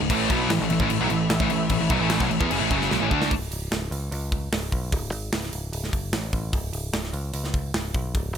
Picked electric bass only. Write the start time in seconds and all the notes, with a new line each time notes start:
0.00 C#1
0.10 A1
0.30 B1
0.50 A1
0.60 A1
0.70 A1
0.80 A1
0.90 A1
1.00 B1
1.10 A1
1.29 A1
1.40 A1
1.50 A1
1.70 A1
1.79 A1
1.90 B1
1.99 A1
2.20 B1
2.30 A1
2.41 E2
2.51 F#1
2.61 A1
2.70 F#1
2.91 B1
3.02 A1
3.11 D2
3.31 C#1
3.51 C#1
3.71 C#1
3.91 C#2
4.11 C#2
4.52 C#1
4.72 B1
4.92 C#1
5.12 G#1
5.32 C#1
5.53 C#1
5.72 C#1
5.93 F#1
6.13 A1
6.33 A1
6.53 C#1
6.73 C#1
6.93 C#1
7.13 C#2
7.34 C#2
7.74 C#1
7.95 B1
8.15 C#1
8.35 G#1